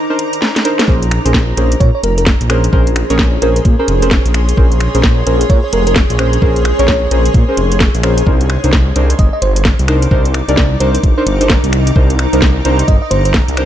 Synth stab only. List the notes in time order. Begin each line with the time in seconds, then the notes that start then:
0.10 D4 D#4 A#4 C5
0.65 D4 D#4 A#4 C5
0.88 C#4 G#4 A#4 C5
1.25 C#4 G#4 A#4 C5
1.57 C#4 G#4 A#4 C5
2.50 C#4 G#4 A#4 C5
2.73 C#4 G#4 A#4 C5
3.10 C#4 G#4 A#4 C#5
3.42 C#4 G#4 A#4 C5
3.79 C#4 G#4 A#4 C5
4.02 C#4 G#4 A#4 C5
4.57 C#4 G#4 A#4 C5
4.95 C#4 G#4 A#4 C5
5.26 C#4 G#4 A#4 C5
6.19 C#4 G#4 A#4 C5
6.42 C#4 G#4 A#4 C5
6.79 C#4 G#4 A#4 C#5
7.11 C#4 G#4 A#4 C5
7.48 C#4 G#4 A#4 C5
8.03 C#4 G#4 A#4 C5
8.27 D4 D#4 A#4 C5
8.64 D4 D#4 A#4 C5
8.96 D4 D#4 A#4 C5
9.88 D4 D#4 A#4 C5
10.11 D4 D#4 A#4 C5
10.48 D4 D#4 A#4 D5
10.80 D4 D#4 A#4 C5
11.18 D4 D#4 A#4 C5
11.41 D4 D#4 A#4 C5
11.96 D4 D#4 A#4 C5
12.33 D4 D#4 A#4 C5
12.65 D4 D#4 A#4 C5
13.57 D4 D#4 A#4 C5